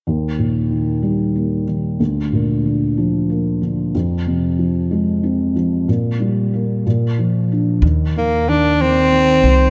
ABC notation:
X:1
M:6/8
L:1/8
Q:3/8=62
K:Eb
V:1 name="Tenor saxophone"
z6 | z6 | z6 | z6 |
z B, D C3 |]
V:2 name="Felt piano" clef=bass
E,, B,, E, G, B, E, | D,, B,, D, F, B, D, | F,, C, F, A, C F, | B,, G, B, B,, F, D |
E, E, E, E, E, E, |]
V:3 name="Upright bass" clef=bass
z6 | z6 | z6 | z6 |
E,,4- E,, C,, |]